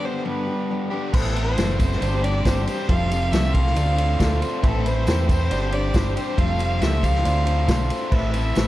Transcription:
Already playing: G2 D3 G3 B3 D4 G4
0.03 G3 B3 D4 G4 C5
0.25 G2 D3 G3 B3 D4 G4 B4
0.46 G3 B3 D4 G4
0.69 G3 B3 D4 G4
0.91 G2 D3 G3 B3 D4 G4
1.12 A1 A2 E3 B3 C4 E4 A4 B4 C5, kick, crash, tambourine
1.35 B3 C4 E4 A4 C5, ride
1.56 F#1 A2 E3 B3 C4 E4 A4 B4 C5, snare, ride, tambourine
1.78 B3 C4 E4 C5, kick, ride, tambourine
1.92 snare
2.00 G1 G2 D3 G3 C4 D4 G4 C5 D5, ride, tambourine
2.21 G3 C4 D4 G4 D5, ride, tambourine
2.44 G1 G2 D3 G3 C4 D4 G4 C5 D5, kick, snare, ride, tambourine
2.66 G3 C4 D4 G4 C5, ride, tambourine
2.87 F1 F2 C3 F3 G3 A3 C4 F4 G4 A4 F5, kick, ride, tambourine
3.11 F3 A3 C4 F4 A4, ride, tambourine
3.31 C2 F2 C3 F3 G3 A3 C4 F4 G4 A4 E5, snare, ride, tambourine
3.53 C4 F4 A4 F5, kick, ride
3.67 snare
3.75 D2 D3 A3 C4 D4 F4 A4 C5 D5, ride, tambourine
3.97 A3 C4 D4 F4 A4, ride, tambourine
4.19 D2 D3 A3 C4 D4 F4 A4 C5 D5, kick, snare, ride, tambourine
4.41 A3 C4 D4 F4 A4, ride, tambourine
4.62 A1 A2 E3 A3 C4 E4 A4 B4 C5, kick, ride, tambourine
4.85 A3 C4 E4 B4 C5, ride, tambourine
5.06 E2 A2 E3 A3 C4 E4 A4 B4 C5, snare, ride, tambourine
5.28 C4 E4 B4 C5, kick, ride, tambourine
5.49 G1 G2 D3 G3 C4 D4 G4 C5 D5, ride, tambourine
5.72 G3 C4 D4 G4 C5 D5, ride, tambourine
5.94 G1 G3 C4 D4 G4 C5 D5, kick, snare, ride, tambourine
6.15 G3 C4 D4 G4 C5, ride, tambourine
6.37 F1 F2 C3 F3 G3 A3 C4 F4 G4 A4 C5 F5, kick, ride, tambourine
6.59 F3 G3 A3 C4 F4 C5, ride, tambourine
6.80 C#2 F2 C3 F3 G3 A3 C4 F4 G4 A4 C5 E5 F5, snare, ride, tambourine
7.03 G3 F4 C5 F5, kick, ride, tambourine
7.15 snare
7.24 D2 D3 A3 C4 D4 F4 A4 C5 D5, ride, tambourine
7.46 A3 C4 D4 F4 C5, ride
7.67 B1 D3 A3 C4 D4 F4 C5 D5, kick, snare, ride, tambourine
7.90 A3 C4 D4 F4 C5, ride, tambourine
8.10 A1 A2 E3 A3 C4 E4 A4 B4 C5 E5, kick, tambourine, crash
8.33 A3 C4 E4 B4 E5, ride, tambourine
8.54 A1 A2 E3 A3 C4 E4 A4 B4 C5, snare, ride, tambourine

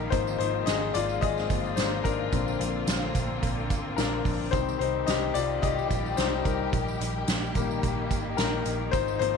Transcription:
Already playing: D#3 G3 A#3 D#4 A#4
0.10 G#1 F3 G#3 A#3 C4 D#4 F4 C5, kick, closed hi-hat, tambourine
0.27 tambourine
0.38 G#1 D#4 C5, closed hi-hat
0.66 G#1 G#4 D#5, snare, closed hi-hat, tambourine
0.94 G#1 F4 D5, closed hi-hat, tambourine
1.09 tambourine
1.21 G#1 G#4 D#5, kick, closed hi-hat, tambourine
1.37 snare, tambourine
1.50 G1 F3 A#3 C4, kick, closed hi-hat, tambourine
1.65 tambourine
1.76 G#1 D#4 C5, snare, closed hi-hat, tambourine
2.04 G#1 D4 A#4, kick, closed hi-hat, tambourine
2.32 A#1 D3 A#3 C4, kick, closed hi-hat, tambourine
2.48 tambourine
2.60 A#1, closed hi-hat
2.87 A#1, snare, closed hi-hat, tambourine
3.15 A#1, kick, closed hi-hat, tambourine
3.43 A#1, kick, closed hi-hat, tambourine
3.70 G#1, kick, closed hi-hat, tambourine
3.96 A#1 D4 A#4, snare, closed hi-hat, tambourine
4.25 A#1, kick, open hi-hat, tambourine
4.51 C2 D#3 G3 C4 D#4 G4 C5, kick, closed hi-hat, tambourine
4.69 tambourine
4.79 C2 D#4 C5, closed hi-hat
5.07 C2 G4 D#5, snare, closed hi-hat, tambourine
5.34 C2 F4 D5, closed hi-hat, tambourine
5.62 C2 G4 D#5, kick, closed hi-hat, tambourine
5.79 tambourine
5.91 A#1, kick, closed hi-hat, tambourine
6.06 tambourine
6.17 C2 D#4 C5, snare, closed hi-hat, tambourine
6.45 C2 D#4 A#4, kick, closed hi-hat, tambourine
6.73 A#1 D#3 A#3, kick, closed hi-hat, tambourine
6.88 tambourine
7.01 A#1, closed hi-hat
7.28 A#1, snare, closed hi-hat, tambourine
7.43 tambourine
7.55 A#1 D#3 G3 A#3, kick, closed hi-hat, tambourine
7.71 tambourine
7.83 A#1, kick, closed hi-hat, tambourine
8.11 G#1, kick, closed hi-hat, tambourine
8.37 A#1 D#4 A#4, snare, closed hi-hat, tambourine
8.66 A#1, closed hi-hat, tambourine
8.91 G#1 G#3 C4 D#4 F4 C5, kick, closed hi-hat, tambourine
9.08 tambourine
9.19 G#1 F3 A#3 C4 D#4 C5, closed hi-hat

